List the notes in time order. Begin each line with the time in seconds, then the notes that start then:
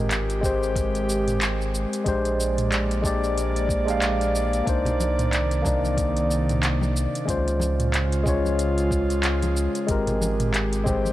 Already playing: G#1 G#3 C4 G4 A#4
0.11 clap, closed hi-hat, shaker
0.30 closed hi-hat, shaker
0.41 G#3 C4 G4, kick, shaker
0.46 C5
0.63 shaker
0.76 kick, closed hi-hat, shaker
0.95 closed hi-hat, shaker
1.10 shaker
1.28 closed hi-hat, mid tom, shaker
1.42 clap, closed hi-hat, shaker
1.61 shaker
1.75 shaker
1.93 closed hi-hat, shaker
2.04 A#1 G#3 A#3 D4 G4 D5, kick, closed hi-hat, shaker
2.08 C5
2.25 closed hi-hat, shaker
2.40 shaker
2.58 closed hi-hat, mid tom, shaker
2.72 clap, closed hi-hat, shaker
2.91 closed hi-hat, shaker
3.02 G#3 D4 G4, kick, shaker
3.07 D5
3.24 shaker
3.38 closed hi-hat, shaker
3.56 closed hi-hat, shaker
3.69 kick, shaker
3.85 G#3 D4 G4, closed hi-hat, shaker
3.90 F5
4.02 A#1, clap, closed hi-hat, shaker
4.21 closed hi-hat, shaker
4.36 shaker
4.53 closed hi-hat, shaker
4.64 C2 C3 D#3 A#3 D4 D#4, kick, closed hi-hat, shaker
4.69 C5
4.85 closed hi-hat, low conga, shaker
5.00 high conga, shaker
5.19 closed hi-hat, mid tom, shaker
5.33 clap, closed hi-hat, shaker
5.51 closed hi-hat, shaker
5.62 A#3 D4 D#4, kick, low conga, shaker
5.67 D5
5.84 high conga, shaker
5.97 kick, closed hi-hat, shaker
6.17 closed hi-hat, shaker
6.31 shaker
6.49 closed hi-hat, mid tom, shaker
6.63 clap, closed hi-hat, shaker
6.81 high conga, shaker
6.97 shaker
7.15 closed hi-hat, shaker
7.25 C#2 C#3 G#3 C#4 F4, kick, closed hi-hat
7.29 C5, shaker
7.48 closed hi-hat, shaker
7.60 high conga, shaker
7.80 closed hi-hat, mid tom, shaker
7.94 clap, closed hi-hat, shaker
8.12 closed hi-hat, shaker
8.24 G#3 C#4 F4, kick, low conga, shaker
8.29 C#5
8.45 high conga, shaker
8.59 closed hi-hat, shaker
8.78 closed hi-hat, shaker
8.91 kick, shaker
9.10 closed hi-hat, shaker
9.23 clap, closed hi-hat, shaker
9.42 closed hi-hat, high conga, shaker
9.57 shaker
9.75 closed hi-hat, shaker
9.86 G#1 G#3 C4 G4, kick, closed hi-hat, shaker
9.91 A#4
10.07 closed hi-hat, low conga, shaker
10.22 high conga, shaker
10.40 closed hi-hat, mid tom, shaker
10.54 clap, closed hi-hat, shaker
10.73 closed hi-hat, shaker
10.84 G#3 C4 G4, kick, low conga, shaker
10.88 C5
11.05 high conga, shaker